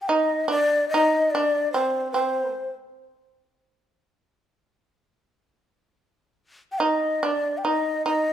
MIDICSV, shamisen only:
0, 0, Header, 1, 2, 480
1, 0, Start_track
1, 0, Tempo, 833333
1, 778, Time_signature, 2, 2, 24, 8
1, 778, Tempo, 809717
1, 2218, Tempo, 855920
1, 4769, End_track
2, 0, Start_track
2, 0, Title_t, "Shamisen"
2, 0, Program_c, 0, 106
2, 52, Note_on_c, 0, 63, 56
2, 275, Note_off_c, 0, 63, 0
2, 277, Note_on_c, 0, 62, 59
2, 510, Note_off_c, 0, 62, 0
2, 542, Note_on_c, 0, 63, 58
2, 763, Note_off_c, 0, 63, 0
2, 776, Note_on_c, 0, 62, 57
2, 1003, Note_off_c, 0, 62, 0
2, 1011, Note_on_c, 0, 60, 53
2, 1236, Note_off_c, 0, 60, 0
2, 1248, Note_on_c, 0, 60, 47
2, 1473, Note_off_c, 0, 60, 0
2, 1473, Note_on_c, 0, 56, 47
2, 1582, Note_off_c, 0, 56, 0
2, 3912, Note_on_c, 0, 63, 57
2, 4135, Note_off_c, 0, 63, 0
2, 4152, Note_on_c, 0, 62, 56
2, 4373, Note_off_c, 0, 62, 0
2, 4387, Note_on_c, 0, 63, 52
2, 4605, Note_off_c, 0, 63, 0
2, 4617, Note_on_c, 0, 63, 55
2, 4769, Note_off_c, 0, 63, 0
2, 4769, End_track
0, 0, End_of_file